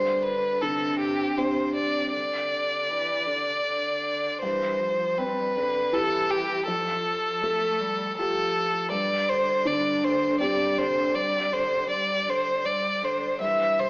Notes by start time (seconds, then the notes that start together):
Already playing: G2 D3 C5
0.25 B4
0.62 C3 D3 A4
0.99 G4
1.37 C3 C4 D4 G4 C5
1.75 D5
2.12 D3 D5
2.90 E3
3.26 D3
3.66 D3
4.42 G2 E3 C5
4.80 F3
5.18 G3 C4 B4
5.56 D3
5.92 E3 E4 G4 A4
6.31 G4
6.68 F2 F3 A4
7.43 A3
7.81 G3
8.18 F3 F4 G4 A4
8.92 G2 G3 D5
9.29 D3 C5
9.65 D3 G3 D5
10.02 D3 C5
10.40 G3 C4 D4 G4 D5
10.78 D3 C5
11.15 G3 D5
11.53 D3 C5
11.90 G3 D5
12.28 D3 C5
12.65 G3 D5
13.03 D3 C5
13.40 G2 E3 E5
13.79 G3 C5